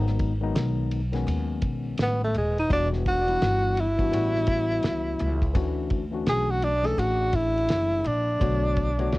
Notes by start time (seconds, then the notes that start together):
Already playing: G#1 D#3 F#3 G#3 B3 D#4
0.07 snare
0.19 kick, ride
0.41 D#3 F#3 G#3 B3 D#4
0.55 B1, snare, hi-hat pedal, ride
0.91 ride
1.12 D#3 F#3 G#3 B3 C#4, snare, ride
1.27 D#2, ride
1.62 B1, kick, ride
1.98 A1, snare, hi-hat pedal, ride
2.02 B3
2.24 A3
2.34 D#1 G#3, ride
2.58 D#4, ride
2.69 E1 E3 G3 B3 D4 F#4, kick, ride
2.93 snare
3.06 F#4, kick, ride
3.27 E3 G3 B3 D4 E4, ride
3.42 G1, snare, hi-hat pedal, ride
3.77 E4, ride
3.98 E3 G3 B3 D4 F#4, kick, ride
4.11 A1 E3 G3 B3 C#4 F#4, ride
4.35 snare
4.47 kick, ride
4.72 ride
4.83 C#2, snare, hi-hat pedal, ride
5.19 C#2, ride
5.42 kick, ride
5.53 D2 E3 A3 C#4 D4 F#4, kick, ride
5.90 kick, ride
6.11 E3 A3 C#4 D4 F#4
6.26 B1 G#4, snare, hi-hat pedal, ride
6.51 F#4
6.62 D4, ride
6.83 E3 A3 C#4 D4 G#4 A4, snare, ride
6.98 A1 F#4, ride
7.33 E4, kick, ride
7.58 ride
7.68 F#1, snare, hi-hat pedal, ride
8.04 A#1 D4, ride
8.39 B1 D3 A3 B3 F#4 C#5, kick, ride
8.76 kick, ride
8.98 C#3 A3 B3 F#4 C#5, ride
9.04 D3
9.12 D2, snare, hi-hat pedal, ride